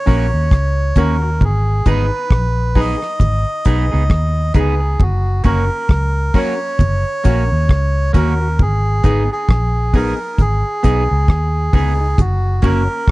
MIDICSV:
0, 0, Header, 1, 7, 480
1, 0, Start_track
1, 0, Tempo, 898204
1, 755, Time_signature, 4, 2, 24, 8
1, 7008, End_track
2, 0, Start_track
2, 0, Title_t, "Melodica"
2, 0, Program_c, 0, 22
2, 0, Note_on_c, 0, 73, 106
2, 535, Note_on_c, 0, 70, 85
2, 553, Note_off_c, 0, 73, 0
2, 771, Note_off_c, 0, 70, 0
2, 772, Note_on_c, 0, 68, 84
2, 1010, Note_off_c, 0, 68, 0
2, 1015, Note_on_c, 0, 71, 92
2, 1494, Note_on_c, 0, 75, 100
2, 1498, Note_off_c, 0, 71, 0
2, 2422, Note_off_c, 0, 75, 0
2, 2453, Note_on_c, 0, 68, 92
2, 2684, Note_on_c, 0, 66, 84
2, 2690, Note_off_c, 0, 68, 0
2, 2901, Note_off_c, 0, 66, 0
2, 2923, Note_on_c, 0, 70, 96
2, 3409, Note_on_c, 0, 73, 108
2, 3412, Note_off_c, 0, 70, 0
2, 4339, Note_off_c, 0, 73, 0
2, 4369, Note_on_c, 0, 70, 89
2, 4606, Note_on_c, 0, 68, 91
2, 4607, Note_off_c, 0, 70, 0
2, 4972, Note_off_c, 0, 68, 0
2, 4980, Note_on_c, 0, 68, 92
2, 5324, Note_on_c, 0, 70, 88
2, 5327, Note_off_c, 0, 68, 0
2, 5561, Note_on_c, 0, 68, 102
2, 5564, Note_off_c, 0, 70, 0
2, 6274, Note_off_c, 0, 68, 0
2, 6282, Note_on_c, 0, 68, 95
2, 6522, Note_on_c, 0, 66, 83
2, 6523, Note_off_c, 0, 68, 0
2, 6763, Note_off_c, 0, 66, 0
2, 6764, Note_on_c, 0, 70, 94
2, 7008, Note_off_c, 0, 70, 0
2, 7008, End_track
3, 0, Start_track
3, 0, Title_t, "Synth stab"
3, 0, Program_c, 1, 62
3, 31, Note_on_c, 1, 61, 80
3, 35, Note_on_c, 1, 66, 73
3, 38, Note_on_c, 1, 70, 99
3, 163, Note_off_c, 1, 61, 0
3, 165, Note_off_c, 1, 66, 0
3, 167, Note_off_c, 1, 70, 0
3, 515, Note_on_c, 1, 61, 83
3, 519, Note_on_c, 1, 66, 78
3, 522, Note_on_c, 1, 70, 99
3, 645, Note_off_c, 1, 61, 0
3, 647, Note_off_c, 1, 66, 0
3, 648, Note_off_c, 1, 70, 0
3, 657, Note_on_c, 1, 66, 39
3, 657, Note_on_c, 1, 70, 46
3, 695, Note_off_c, 1, 70, 0
3, 696, Note_off_c, 1, 66, 0
3, 994, Note_on_c, 1, 63, 94
3, 998, Note_on_c, 1, 68, 81
3, 1001, Note_on_c, 1, 71, 97
3, 1124, Note_off_c, 1, 63, 0
3, 1126, Note_off_c, 1, 68, 0
3, 1127, Note_off_c, 1, 71, 0
3, 1474, Note_on_c, 1, 63, 99
3, 1474, Note_on_c, 1, 68, 90
3, 1478, Note_on_c, 1, 71, 102
3, 1603, Note_off_c, 1, 63, 0
3, 1604, Note_off_c, 1, 68, 0
3, 1606, Note_off_c, 1, 71, 0
3, 1952, Note_on_c, 1, 63, 84
3, 1958, Note_on_c, 1, 68, 84
3, 1960, Note_on_c, 1, 71, 89
3, 2082, Note_off_c, 1, 63, 0
3, 2085, Note_off_c, 1, 68, 0
3, 2087, Note_off_c, 1, 71, 0
3, 2432, Note_on_c, 1, 63, 92
3, 2436, Note_on_c, 1, 68, 87
3, 2439, Note_on_c, 1, 71, 98
3, 2563, Note_off_c, 1, 63, 0
3, 2564, Note_off_c, 1, 68, 0
3, 2566, Note_off_c, 1, 71, 0
3, 2913, Note_on_c, 1, 61, 90
3, 2918, Note_on_c, 1, 66, 90
3, 2921, Note_on_c, 1, 70, 99
3, 3043, Note_off_c, 1, 61, 0
3, 3045, Note_off_c, 1, 66, 0
3, 3046, Note_off_c, 1, 70, 0
3, 3393, Note_on_c, 1, 61, 98
3, 3396, Note_on_c, 1, 66, 85
3, 3398, Note_on_c, 1, 70, 99
3, 3522, Note_off_c, 1, 61, 0
3, 3524, Note_off_c, 1, 66, 0
3, 3525, Note_off_c, 1, 70, 0
3, 3873, Note_on_c, 1, 61, 89
3, 3876, Note_on_c, 1, 66, 75
3, 3879, Note_on_c, 1, 70, 91
3, 4002, Note_off_c, 1, 61, 0
3, 4004, Note_off_c, 1, 66, 0
3, 4005, Note_off_c, 1, 70, 0
3, 4354, Note_on_c, 1, 61, 80
3, 4357, Note_on_c, 1, 66, 81
3, 4360, Note_on_c, 1, 70, 100
3, 4482, Note_off_c, 1, 61, 0
3, 4484, Note_off_c, 1, 66, 0
3, 4486, Note_off_c, 1, 70, 0
3, 4494, Note_on_c, 1, 70, 44
3, 4496, Note_on_c, 1, 66, 40
3, 4533, Note_off_c, 1, 70, 0
3, 4534, Note_off_c, 1, 66, 0
3, 4832, Note_on_c, 1, 59, 100
3, 4835, Note_on_c, 1, 63, 84
3, 4839, Note_on_c, 1, 68, 105
3, 4962, Note_off_c, 1, 59, 0
3, 4963, Note_off_c, 1, 63, 0
3, 4965, Note_off_c, 1, 68, 0
3, 5316, Note_on_c, 1, 59, 90
3, 5319, Note_on_c, 1, 63, 90
3, 5321, Note_on_c, 1, 68, 102
3, 5444, Note_off_c, 1, 59, 0
3, 5445, Note_off_c, 1, 63, 0
3, 5446, Note_off_c, 1, 68, 0
3, 5789, Note_on_c, 1, 59, 94
3, 5793, Note_on_c, 1, 63, 78
3, 5796, Note_on_c, 1, 68, 96
3, 5920, Note_off_c, 1, 59, 0
3, 5922, Note_off_c, 1, 63, 0
3, 5923, Note_off_c, 1, 68, 0
3, 6272, Note_on_c, 1, 59, 85
3, 6274, Note_on_c, 1, 63, 79
3, 6277, Note_on_c, 1, 68, 93
3, 6401, Note_off_c, 1, 59, 0
3, 6402, Note_off_c, 1, 63, 0
3, 6404, Note_off_c, 1, 68, 0
3, 6413, Note_on_c, 1, 63, 39
3, 6415, Note_on_c, 1, 68, 44
3, 6451, Note_off_c, 1, 63, 0
3, 6452, Note_off_c, 1, 68, 0
3, 6750, Note_on_c, 1, 61, 94
3, 6754, Note_on_c, 1, 66, 85
3, 6758, Note_on_c, 1, 70, 103
3, 6880, Note_off_c, 1, 61, 0
3, 6882, Note_off_c, 1, 66, 0
3, 6884, Note_off_c, 1, 70, 0
3, 7008, End_track
4, 0, Start_track
4, 0, Title_t, "Clean electric guitar"
4, 0, Program_c, 2, 27
4, 34, Note_on_c, 2, 58, 77
4, 39, Note_on_c, 2, 61, 89
4, 43, Note_on_c, 2, 66, 84
4, 135, Note_off_c, 2, 58, 0
4, 137, Note_off_c, 2, 61, 0
4, 139, Note_off_c, 2, 66, 0
4, 516, Note_on_c, 2, 58, 64
4, 521, Note_on_c, 2, 61, 76
4, 525, Note_on_c, 2, 66, 78
4, 616, Note_off_c, 2, 58, 0
4, 618, Note_off_c, 2, 61, 0
4, 620, Note_off_c, 2, 66, 0
4, 994, Note_on_c, 2, 59, 78
4, 999, Note_on_c, 2, 63, 85
4, 1004, Note_on_c, 2, 68, 90
4, 1094, Note_off_c, 2, 59, 0
4, 1097, Note_off_c, 2, 63, 0
4, 1099, Note_off_c, 2, 68, 0
4, 1473, Note_on_c, 2, 59, 75
4, 1477, Note_on_c, 2, 63, 86
4, 1480, Note_on_c, 2, 68, 85
4, 1573, Note_off_c, 2, 59, 0
4, 1575, Note_off_c, 2, 63, 0
4, 1577, Note_off_c, 2, 68, 0
4, 1954, Note_on_c, 2, 59, 77
4, 1960, Note_on_c, 2, 63, 79
4, 1963, Note_on_c, 2, 68, 78
4, 2054, Note_off_c, 2, 59, 0
4, 2057, Note_off_c, 2, 63, 0
4, 2058, Note_off_c, 2, 68, 0
4, 2092, Note_on_c, 2, 68, 57
4, 2098, Note_on_c, 2, 63, 55
4, 2102, Note_on_c, 2, 59, 52
4, 2150, Note_off_c, 2, 68, 0
4, 2153, Note_off_c, 2, 63, 0
4, 2155, Note_off_c, 2, 59, 0
4, 2427, Note_on_c, 2, 59, 75
4, 2433, Note_on_c, 2, 63, 73
4, 2438, Note_on_c, 2, 68, 78
4, 2530, Note_off_c, 2, 59, 0
4, 2533, Note_off_c, 2, 63, 0
4, 2535, Note_off_c, 2, 68, 0
4, 2905, Note_on_c, 2, 58, 70
4, 2910, Note_on_c, 2, 61, 77
4, 2916, Note_on_c, 2, 66, 78
4, 3009, Note_off_c, 2, 58, 0
4, 3011, Note_off_c, 2, 61, 0
4, 3014, Note_off_c, 2, 66, 0
4, 3389, Note_on_c, 2, 58, 76
4, 3394, Note_on_c, 2, 61, 92
4, 3399, Note_on_c, 2, 66, 86
4, 3490, Note_off_c, 2, 58, 0
4, 3493, Note_off_c, 2, 61, 0
4, 3495, Note_off_c, 2, 66, 0
4, 3868, Note_on_c, 2, 58, 75
4, 3873, Note_on_c, 2, 61, 79
4, 3876, Note_on_c, 2, 66, 84
4, 3970, Note_off_c, 2, 58, 0
4, 3973, Note_off_c, 2, 61, 0
4, 3974, Note_off_c, 2, 66, 0
4, 4345, Note_on_c, 2, 58, 76
4, 4351, Note_on_c, 2, 61, 82
4, 4354, Note_on_c, 2, 66, 86
4, 4448, Note_off_c, 2, 58, 0
4, 4451, Note_off_c, 2, 61, 0
4, 4453, Note_off_c, 2, 66, 0
4, 4828, Note_on_c, 2, 59, 80
4, 4832, Note_on_c, 2, 63, 79
4, 4838, Note_on_c, 2, 68, 86
4, 4930, Note_off_c, 2, 59, 0
4, 4932, Note_off_c, 2, 63, 0
4, 4935, Note_off_c, 2, 68, 0
4, 5309, Note_on_c, 2, 59, 67
4, 5315, Note_on_c, 2, 63, 75
4, 5320, Note_on_c, 2, 68, 85
4, 5410, Note_off_c, 2, 59, 0
4, 5413, Note_off_c, 2, 63, 0
4, 5416, Note_off_c, 2, 68, 0
4, 5788, Note_on_c, 2, 59, 82
4, 5795, Note_on_c, 2, 63, 82
4, 5799, Note_on_c, 2, 68, 84
4, 5889, Note_off_c, 2, 59, 0
4, 5893, Note_off_c, 2, 63, 0
4, 5895, Note_off_c, 2, 68, 0
4, 6269, Note_on_c, 2, 59, 68
4, 6273, Note_on_c, 2, 63, 75
4, 6279, Note_on_c, 2, 68, 74
4, 6370, Note_off_c, 2, 59, 0
4, 6372, Note_off_c, 2, 63, 0
4, 6375, Note_off_c, 2, 68, 0
4, 6746, Note_on_c, 2, 58, 73
4, 6751, Note_on_c, 2, 61, 86
4, 6755, Note_on_c, 2, 66, 87
4, 6848, Note_off_c, 2, 58, 0
4, 6851, Note_off_c, 2, 61, 0
4, 6853, Note_off_c, 2, 66, 0
4, 7008, End_track
5, 0, Start_track
5, 0, Title_t, "Fingered electric bass"
5, 0, Program_c, 3, 33
5, 43, Note_on_c, 3, 34, 93
5, 162, Note_off_c, 3, 34, 0
5, 180, Note_on_c, 3, 39, 75
5, 268, Note_off_c, 3, 39, 0
5, 278, Note_on_c, 3, 37, 88
5, 490, Note_off_c, 3, 37, 0
5, 517, Note_on_c, 3, 39, 82
5, 759, Note_on_c, 3, 32, 104
5, 767, Note_off_c, 3, 39, 0
5, 970, Note_off_c, 3, 32, 0
5, 998, Note_on_c, 3, 32, 82
5, 1119, Note_off_c, 3, 32, 0
5, 1236, Note_on_c, 3, 34, 89
5, 1571, Note_off_c, 3, 34, 0
5, 1713, Note_on_c, 3, 32, 102
5, 1836, Note_off_c, 3, 32, 0
5, 1960, Note_on_c, 3, 35, 83
5, 2080, Note_off_c, 3, 35, 0
5, 2103, Note_on_c, 3, 37, 80
5, 2189, Note_off_c, 3, 37, 0
5, 2193, Note_on_c, 3, 39, 92
5, 2407, Note_off_c, 3, 39, 0
5, 2433, Note_on_c, 3, 37, 84
5, 2646, Note_off_c, 3, 37, 0
5, 2672, Note_on_c, 3, 30, 104
5, 2886, Note_off_c, 3, 30, 0
5, 2915, Note_on_c, 3, 30, 87
5, 3036, Note_off_c, 3, 30, 0
5, 3151, Note_on_c, 3, 37, 83
5, 3365, Note_off_c, 3, 37, 0
5, 3633, Note_on_c, 3, 30, 84
5, 3755, Note_off_c, 3, 30, 0
5, 3879, Note_on_c, 3, 34, 90
5, 3998, Note_off_c, 3, 34, 0
5, 4017, Note_on_c, 3, 39, 75
5, 4105, Note_off_c, 3, 39, 0
5, 4115, Note_on_c, 3, 37, 99
5, 4327, Note_off_c, 3, 37, 0
5, 4353, Note_on_c, 3, 39, 82
5, 4597, Note_on_c, 3, 32, 96
5, 4605, Note_off_c, 3, 39, 0
5, 4808, Note_off_c, 3, 32, 0
5, 4833, Note_on_c, 3, 32, 78
5, 4955, Note_off_c, 3, 32, 0
5, 5074, Note_on_c, 3, 34, 84
5, 5409, Note_off_c, 3, 34, 0
5, 5553, Note_on_c, 3, 32, 94
5, 5675, Note_off_c, 3, 32, 0
5, 5799, Note_on_c, 3, 35, 77
5, 5918, Note_off_c, 3, 35, 0
5, 5938, Note_on_c, 3, 37, 77
5, 6025, Note_off_c, 3, 37, 0
5, 6032, Note_on_c, 3, 39, 89
5, 6245, Note_off_c, 3, 39, 0
5, 6274, Note_on_c, 3, 37, 85
5, 6486, Note_off_c, 3, 37, 0
5, 6515, Note_on_c, 3, 30, 110
5, 6727, Note_off_c, 3, 30, 0
5, 6753, Note_on_c, 3, 30, 87
5, 6874, Note_off_c, 3, 30, 0
5, 7008, End_track
6, 0, Start_track
6, 0, Title_t, "Muted clean electric guitar strokes"
6, 653, Note_on_c, 9, 29, 45
6, 706, Note_off_c, 9, 29, 0
6, 2568, Note_on_c, 9, 29, 44
6, 2621, Note_off_c, 9, 29, 0
6, 6403, Note_on_c, 9, 29, 44
6, 6457, Note_off_c, 9, 29, 0
6, 7008, End_track
7, 0, Start_track
7, 0, Title_t, "Drums"
7, 38, Note_on_c, 9, 46, 46
7, 39, Note_on_c, 9, 36, 81
7, 91, Note_off_c, 9, 46, 0
7, 93, Note_off_c, 9, 36, 0
7, 275, Note_on_c, 9, 36, 116
7, 275, Note_on_c, 9, 44, 61
7, 282, Note_on_c, 9, 37, 106
7, 328, Note_off_c, 9, 36, 0
7, 328, Note_off_c, 9, 44, 0
7, 335, Note_off_c, 9, 37, 0
7, 511, Note_on_c, 9, 42, 73
7, 513, Note_on_c, 9, 36, 88
7, 518, Note_on_c, 9, 64, 63
7, 565, Note_off_c, 9, 42, 0
7, 567, Note_off_c, 9, 36, 0
7, 571, Note_off_c, 9, 64, 0
7, 754, Note_on_c, 9, 36, 103
7, 758, Note_on_c, 9, 64, 77
7, 807, Note_off_c, 9, 36, 0
7, 811, Note_off_c, 9, 64, 0
7, 992, Note_on_c, 9, 42, 75
7, 993, Note_on_c, 9, 36, 83
7, 996, Note_on_c, 9, 64, 75
7, 1045, Note_off_c, 9, 42, 0
7, 1047, Note_off_c, 9, 36, 0
7, 1049, Note_off_c, 9, 64, 0
7, 1232, Note_on_c, 9, 36, 116
7, 1232, Note_on_c, 9, 63, 46
7, 1240, Note_on_c, 9, 37, 114
7, 1285, Note_off_c, 9, 36, 0
7, 1285, Note_off_c, 9, 63, 0
7, 1293, Note_off_c, 9, 37, 0
7, 1471, Note_on_c, 9, 63, 52
7, 1472, Note_on_c, 9, 36, 86
7, 1475, Note_on_c, 9, 46, 72
7, 1524, Note_off_c, 9, 63, 0
7, 1525, Note_off_c, 9, 36, 0
7, 1528, Note_off_c, 9, 46, 0
7, 1615, Note_on_c, 9, 37, 57
7, 1669, Note_off_c, 9, 37, 0
7, 1709, Note_on_c, 9, 36, 91
7, 1710, Note_on_c, 9, 44, 57
7, 1715, Note_on_c, 9, 64, 68
7, 1763, Note_off_c, 9, 36, 0
7, 1763, Note_off_c, 9, 44, 0
7, 1768, Note_off_c, 9, 64, 0
7, 1949, Note_on_c, 9, 42, 68
7, 1955, Note_on_c, 9, 36, 86
7, 2003, Note_off_c, 9, 42, 0
7, 2008, Note_off_c, 9, 36, 0
7, 2190, Note_on_c, 9, 36, 109
7, 2195, Note_on_c, 9, 37, 104
7, 2244, Note_off_c, 9, 36, 0
7, 2249, Note_off_c, 9, 37, 0
7, 2427, Note_on_c, 9, 42, 73
7, 2429, Note_on_c, 9, 36, 96
7, 2436, Note_on_c, 9, 64, 58
7, 2480, Note_off_c, 9, 42, 0
7, 2483, Note_off_c, 9, 36, 0
7, 2489, Note_off_c, 9, 64, 0
7, 2670, Note_on_c, 9, 36, 104
7, 2674, Note_on_c, 9, 64, 75
7, 2724, Note_off_c, 9, 36, 0
7, 2728, Note_off_c, 9, 64, 0
7, 2905, Note_on_c, 9, 42, 76
7, 2910, Note_on_c, 9, 36, 84
7, 2913, Note_on_c, 9, 64, 76
7, 2959, Note_off_c, 9, 42, 0
7, 2963, Note_off_c, 9, 36, 0
7, 2967, Note_off_c, 9, 64, 0
7, 3149, Note_on_c, 9, 36, 112
7, 3151, Note_on_c, 9, 63, 44
7, 3157, Note_on_c, 9, 37, 108
7, 3202, Note_off_c, 9, 36, 0
7, 3205, Note_off_c, 9, 63, 0
7, 3211, Note_off_c, 9, 37, 0
7, 3389, Note_on_c, 9, 36, 85
7, 3389, Note_on_c, 9, 46, 72
7, 3391, Note_on_c, 9, 63, 60
7, 3442, Note_off_c, 9, 36, 0
7, 3442, Note_off_c, 9, 46, 0
7, 3445, Note_off_c, 9, 63, 0
7, 3629, Note_on_c, 9, 36, 95
7, 3632, Note_on_c, 9, 44, 56
7, 3637, Note_on_c, 9, 64, 70
7, 3682, Note_off_c, 9, 36, 0
7, 3686, Note_off_c, 9, 44, 0
7, 3690, Note_off_c, 9, 64, 0
7, 3871, Note_on_c, 9, 42, 63
7, 3875, Note_on_c, 9, 36, 85
7, 3925, Note_off_c, 9, 42, 0
7, 3929, Note_off_c, 9, 36, 0
7, 4111, Note_on_c, 9, 36, 101
7, 4118, Note_on_c, 9, 37, 113
7, 4164, Note_off_c, 9, 36, 0
7, 4172, Note_off_c, 9, 37, 0
7, 4351, Note_on_c, 9, 36, 90
7, 4351, Note_on_c, 9, 42, 74
7, 4355, Note_on_c, 9, 64, 59
7, 4404, Note_off_c, 9, 36, 0
7, 4404, Note_off_c, 9, 42, 0
7, 4408, Note_off_c, 9, 64, 0
7, 4592, Note_on_c, 9, 36, 108
7, 4592, Note_on_c, 9, 64, 78
7, 4645, Note_off_c, 9, 36, 0
7, 4646, Note_off_c, 9, 64, 0
7, 4829, Note_on_c, 9, 42, 76
7, 4831, Note_on_c, 9, 36, 86
7, 4831, Note_on_c, 9, 64, 72
7, 4882, Note_off_c, 9, 42, 0
7, 4884, Note_off_c, 9, 36, 0
7, 4885, Note_off_c, 9, 64, 0
7, 5069, Note_on_c, 9, 36, 108
7, 5073, Note_on_c, 9, 63, 48
7, 5080, Note_on_c, 9, 37, 112
7, 5123, Note_off_c, 9, 36, 0
7, 5127, Note_off_c, 9, 63, 0
7, 5133, Note_off_c, 9, 37, 0
7, 5310, Note_on_c, 9, 36, 84
7, 5311, Note_on_c, 9, 46, 72
7, 5311, Note_on_c, 9, 63, 56
7, 5363, Note_off_c, 9, 36, 0
7, 5364, Note_off_c, 9, 63, 0
7, 5365, Note_off_c, 9, 46, 0
7, 5549, Note_on_c, 9, 36, 94
7, 5552, Note_on_c, 9, 64, 69
7, 5553, Note_on_c, 9, 44, 59
7, 5603, Note_off_c, 9, 36, 0
7, 5605, Note_off_c, 9, 64, 0
7, 5606, Note_off_c, 9, 44, 0
7, 5791, Note_on_c, 9, 42, 60
7, 5795, Note_on_c, 9, 36, 83
7, 5844, Note_off_c, 9, 42, 0
7, 5848, Note_off_c, 9, 36, 0
7, 6030, Note_on_c, 9, 36, 112
7, 6038, Note_on_c, 9, 37, 113
7, 6083, Note_off_c, 9, 36, 0
7, 6091, Note_off_c, 9, 37, 0
7, 6270, Note_on_c, 9, 36, 102
7, 6270, Note_on_c, 9, 46, 75
7, 6273, Note_on_c, 9, 64, 61
7, 6324, Note_off_c, 9, 36, 0
7, 6324, Note_off_c, 9, 46, 0
7, 6327, Note_off_c, 9, 64, 0
7, 6510, Note_on_c, 9, 36, 114
7, 6510, Note_on_c, 9, 44, 60
7, 6515, Note_on_c, 9, 64, 79
7, 6563, Note_off_c, 9, 44, 0
7, 6564, Note_off_c, 9, 36, 0
7, 6568, Note_off_c, 9, 64, 0
7, 6744, Note_on_c, 9, 42, 70
7, 6749, Note_on_c, 9, 36, 86
7, 6754, Note_on_c, 9, 64, 70
7, 6798, Note_off_c, 9, 42, 0
7, 6802, Note_off_c, 9, 36, 0
7, 6808, Note_off_c, 9, 64, 0
7, 6988, Note_on_c, 9, 36, 108
7, 7008, Note_off_c, 9, 36, 0
7, 7008, End_track
0, 0, End_of_file